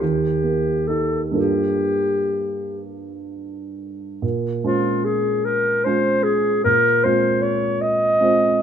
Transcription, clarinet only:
0.00 0.89 G4 soft
0.88 1.22 A4 soft
1.37 2.81 G4 medium
4.64 5.07 F4 medium
5.05 5.47 G#4 soft
5.45 5.86 A#4 medium
5.84 6.25 C5 medium
6.23 6.64 G#4 medium
6.64 7.06 A#4 medium
7.04 7.44 C5 medium
7.42 7.83 C#5 medium
7.81 8.62 D#5 medium

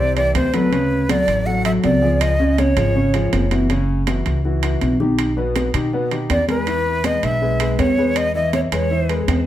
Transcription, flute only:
0.00 0.16 D5 medium
0.17 0.34 D5 medium
0.36 0.56 C5 medium
0.54 1.12 B4 medium
1.10 1.48 D5 medium
1.46 1.65 F#5 medium
1.65 1.71 E5 medium
1.84 2.23 D5 medium
2.21 2.60 D#5 medium
2.59 3.52 C#5 medium
6.31 6.48 D5 medium
6.49 7.07 B4 medium
7.06 7.26 D#5 loud
7.24 7.81 E5 loud
7.79 8.19 C#5 medium
8.17 8.35 D#5 loud
8.35 8.53 D#5 medium
8.54 8.60 C#5 medium
8.73 9.25 C#5 medium

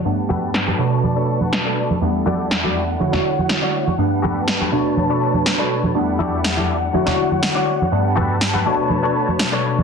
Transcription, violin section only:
0.05 0.78 G3 medium
0.05 2.00 B4 medium
0.05 0.78 F#5 medium
0.05 2.00 A5 medium
0.79 2.01 C#6 medium
2.02 3.00 G3 medium
2.02 3.00 E4 medium
2.02 2.99 A4 medium
2.02 3.00 D5 medium
2.02 4.70 F#5 medium
3.00 3.98 C#5 medium
3.99 4.72 G3 medium
3.99 5.94 B4 medium
3.99 5.94 A5 medium
4.73 5.95 C#5 medium
5.96 6.93 G3 medium
5.96 6.93 E4 medium
5.96 6.93 A4 medium
5.96 6.93 D5 medium
5.96 8.63 F#5 medium
6.94 7.91 C#5 medium
7.92 8.65 G3 medium
7.92 9.83 B4 medium
7.92 9.83 A5 medium
8.66 9.83 C#5 medium

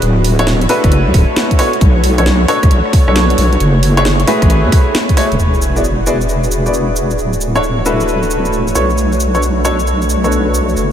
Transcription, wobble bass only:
0.02 0.66 D1 medium
0.84 1.08 F#1 medium
1.06 1.12 D2 medium
1.14 1.25 D1 loud
1.81 2.45 B1 medium
2.63 2.69 D2 medium
2.71 2.82 B1 medium
3.08 3.35 B1 medium
3.38 3.57 B1 medium
3.60 4.24 F#1 medium
4.42 4.66 A1 medium
4.64 4.70 F#2 medium
5.32 5.38 E1 medium
5.39 7.17 E1 medium
7.19 8.74 D1 medium
8.75 10.75 B1 medium
10.77 10.92 F#1 medium

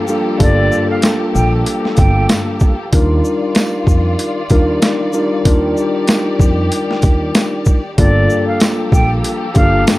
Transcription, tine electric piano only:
0.08 0.37 G3 medium
0.08 0.38 A#3 medium
0.08 0.38 D4 medium
0.08 0.39 F4 medium
0.08 0.39 A4 medium
0.38 2.74 G3 loud
0.38 2.74 A#3 medium
0.38 2.74 D4 medium
0.38 2.74 F4 medium
0.38 2.75 A4 loud
2.92 4.40 G3 medium
2.92 4.40 D4 medium
2.92 4.41 D#4 medium
2.92 4.41 F4 medium
2.92 4.41 A#4 loud
4.50 5.09 G3 medium
4.50 5.10 D4 medium
4.50 5.10 D#4 medium
4.50 5.10 F4 medium
4.50 5.10 A#4 loud
5.13 5.43 G3 medium
5.13 5.43 D4 medium
5.13 5.43 D#4 medium
5.13 5.44 F4 medium
5.13 5.44 A#4 medium
5.45 7.79 G3 medium
5.45 7.80 D4 medium
5.45 7.80 D#4 medium
5.45 7.80 F4 medium
5.45 7.80 A#4 loud
7.99 9.46 G3 medium
7.99 9.46 A#3 medium
7.99 9.46 D4 medium
7.99 9.47 F4 medium
7.99 9.47 A4 loud
9.54 9.98 G3 loud
9.54 9.98 A#3 medium
9.54 9.98 D4 medium
9.54 9.98 F4 medium
9.54 9.98 A4 loud

